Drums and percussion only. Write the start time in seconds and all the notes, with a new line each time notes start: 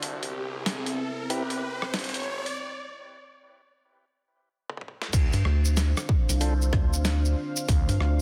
0.03 closed hi-hat
0.23 closed hi-hat
0.66 snare, closed hi-hat
0.86 closed hi-hat
1.30 closed hi-hat
1.50 closed hi-hat
1.82 cross-stick
1.94 snare, closed hi-hat
1.99 closed hi-hat
2.04 closed hi-hat
2.09 closed hi-hat
2.14 closed hi-hat
2.17 closed hi-hat
2.20 closed hi-hat
2.23 closed hi-hat
2.46 closed hi-hat
4.70 high tom
4.77 mid tom, high tom
4.88 high tom
5.02 snare
5.13 kick, closed hi-hat, crash, maracas
5.33 closed hi-hat, maracas
5.45 cross-stick
5.65 maracas
5.77 snare, closed hi-hat, maracas
5.97 cross-stick, closed hi-hat, maracas
6.09 kick
6.29 closed hi-hat, maracas
6.41 closed hi-hat, maracas
6.62 maracas
6.73 kick, cross-stick
6.93 maracas
7.05 snare, closed hi-hat, maracas
7.25 maracas
7.57 maracas
7.69 kick, closed hi-hat, maracas
7.89 closed hi-hat, maracas
8.00 cross-stick